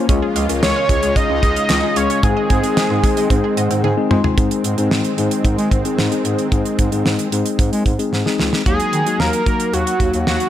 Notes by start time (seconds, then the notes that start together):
0.09 C#2 C#3 G#3 C#4 F4 G#4, kick, closed hi-hat
0.22 G#4
0.36 C#2 F5, closed hi-hat
0.49 C#2 G#3 C#4 F4 A#4, closed hi-hat
0.63 C#2 G#4 C#5, snare, closed hi-hat
0.76 F5
0.89 C#2 G#3 C#4 F4 G#4, kick, closed hi-hat
1.03 C#2 G#4, closed hi-hat
1.16 D#5 F5, kick, closed hi-hat
1.30 C#2 C#4
1.43 C#2 G#4, kick, closed hi-hat
1.56 F5, closed hi-hat
1.69 C#2 C#4, snare, clap, closed hi-hat
1.83 G#3 C#4 F4 G#4
1.96 C#2 G#3 C#4 F4 G#4 C#5 F5, closed hi-hat
2.10 C#4, closed hi-hat
2.23 G#2 D#3 G#3 C4 D#4 G#4, kick, closed hi-hat
2.37 D#5
2.50 G#2 C4, kick, closed hi-hat
2.63 G#3 C4 D#4 G#4, closed hi-hat
2.77 D#5, snare, closed hi-hat
2.90 G#2 C4
3.04 G#3 C4 D#4 G#4, kick, closed hi-hat
3.17 G#3 D#5, closed hi-hat
3.30 G#2 C4, kick, closed hi-hat
3.44 G#4
3.57 G#2 D#5 F#5, closed hi-hat
3.71 G#2 C4, closed hi-hat
3.84 G#2 G#4 G#5, high tom
3.97 G#3 C4 D#4 G#4
4.11 G#3 C4 D#4 F4 C6, mid tom
4.24 G#4, floor tom
4.38 G#2 D#3 G#3 C4 D#4 G#4, kick, closed hi-hat
4.51 closed hi-hat
4.64 G#2, closed hi-hat
4.78 G#2 G#3 C4 D#4 G#4, closed hi-hat
4.91 G#2, snare
5.05 closed hi-hat
5.18 G#2 G#3 C4 D#4 G#4, closed hi-hat
5.31 closed hi-hat
5.45 G#2, kick, closed hi-hat
5.58 G#3, closed hi-hat
5.71 G#2, kick, closed hi-hat
5.85 G#3 C4 D#4 G#4, closed hi-hat
5.98 G#2, snare
6.12 G#3 C4 D#4 G#4, closed hi-hat
6.25 G#2, closed hi-hat
6.39 closed hi-hat
6.52 G#2 G#3 C4 D#4 G#4, kick, closed hi-hat
6.65 closed hi-hat
6.79 G#2, kick, closed hi-hat
6.92 G#2 G#3 C4 D#4 G#4, closed hi-hat
7.05 G#2, snare
7.19 closed hi-hat
7.32 G#2 G#3 C4 D#4 G#4, closed hi-hat
7.46 closed hi-hat
7.59 G#2, kick, closed hi-hat
7.72 G#3, closed hi-hat
7.86 G#2, kick, closed hi-hat
7.99 G#3 C4 D#4 G#4, closed hi-hat
8.13 G#2, snare
8.26 G#3 C4 D#4 G#4, snare
8.39 C#2, snare
8.53 snare
8.66 D#2 F#3 A#3 D#4 F#4 G#4, kick, closed hi-hat
8.80 closed hi-hat
8.93 D#3, closed hi-hat
9.06 F#3 A#3 D#4 F#4, closed hi-hat
9.20 D#2 A#4, snare
9.33 closed hi-hat
9.46 F#3 A#3 D#4 F#4, kick, closed hi-hat
9.60 closed hi-hat
9.73 D#2 F#4, closed hi-hat
9.87 closed hi-hat
10.00 D#2 F#3 A#3 D#4 F#4, kick, closed hi-hat
10.14 D#2, closed hi-hat
10.27 D#2 F#4, snare
10.40 closed hi-hat